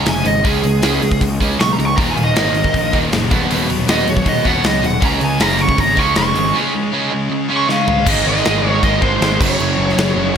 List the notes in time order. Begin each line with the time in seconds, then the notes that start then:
Already playing: C#4 G#4 D#5
0.06 F1 C#3 G#3 G#5, snare, open hi-hat
0.25 G#1 C#3 G#3 D#5, open hi-hat
0.44 C#2 C#3 G#3 C#4 G#4, kick, open hi-hat
0.63 C#2 C#3 G#3, open hi-hat
0.82 C#2 C#3 G#3 C#4, snare, open hi-hat
1.02 C#2 C#3 G#3, open hi-hat
1.11 kick
1.21 C#2 C#3 G#3, kick, open hi-hat
1.40 C#2 C#3 G#3 C#4, kick, open hi-hat
1.59 B1 C#3 G#3 C#6, snare, open hi-hat
1.73 A#5
1.78 C#2 C#3 G#3, open hi-hat
1.85 C#6
1.97 D#1 D#2 A#2 D#3 D#4 A#4 F5 A#5, kick, open hi-hat
2.11 G#5
2.16 D#1 D#2 A#2, open hi-hat
2.24 D#5
2.34 G#1 D#2 A#2 D#3, snare, open hi-hat
2.54 D#2 A#2, open hi-hat
2.64 kick
2.74 A#1 D#2 A#2, kick, open hi-hat
2.92 D#1 D#2 A#2 D#3, kick, open hi-hat
3.12 F#1 D#2 A#2 D#3, snare, open hi-hat
3.30 D#1 B2 F#3 B3 F#4 C#5, kick, open hi-hat
3.50 D#1 B2 F#3 B3, open hi-hat
3.69 D#1 B2 F#3, open hi-hat
3.87 D#1 B2 F#3 B3 D#5, snare, open hi-hat
4.07 D#1 B2 F#3 C#5, open hi-hat
4.17 kick
4.25 D#1 B2 F#3 B3 D#5, kick, open hi-hat
4.44 D#1 B2 F#3 B3, kick, open hi-hat
4.48 F#5
4.63 C#2 B2 F#3 D#5, snare, open hi-hat
4.82 D#1 B2 F#3 F#5, open hi-hat
5.00 C#2 C#3 G#3 C#4 G#4 D#5, kick, open hi-hat
5.05 A#5
5.21 C#2 C#3 G#3 G#5, open hi-hat
5.39 F#1 C#3 G#3 C#4 A#5, snare, open hi-hat
5.57 C#3 G#3 C#6, open hi-hat
5.69 kick
5.77 G#1 C#3 G#3 A#5, kick, open hi-hat
5.95 C#2 C#3 G#3 C#4 C#6, kick, open hi-hat
6.00 C#3
6.14 F1 C#3 G#3 C#6, snare, open hi-hat
6.19 C#4
6.35 G#1 C#3 G#3, open hi-hat
6.53 C#3 G#3 C#4
6.72 C#3 G#3
6.92 C#3 G#3 C#4
7.10 C#3 G#3
7.29 C#3 G#3
7.49 C#3 G#3 C#4
7.57 C#6
7.67 C#3 G#3 C#4 F5 C#6, snare
7.87 C#3 G#3, floor tom
8.05 G#1 G#2 D#3 G#3 D#4 A#4, kick, crash
8.09 D#5
8.26 G#1 G#2 D#3 G#3 D#5
8.37 snare
8.45 G#1 G#2 D#3 G#3, snare, crash
8.63 G#1 G#2 D#3 G#3
8.68 C#5
8.83 G#1 G#2 D#3 G#3 D#5, kick, crash
9.02 G#1 G#2 D#3 G#3 C5, kick
9.21 G#1 G#2 D#3 G#3, snare, crash
9.39 F#1 F#2 C#3 F#3 C#4 G#4 C#5, kick, crash
9.59 F#1 F#2 C#3 F#3, crash
9.78 F#1 F#2 C#3 F#3
9.89 snare
9.97 F#1 F#2 C#3 F#3, snare, crash
10.16 F#1 F#2 C#3 F#3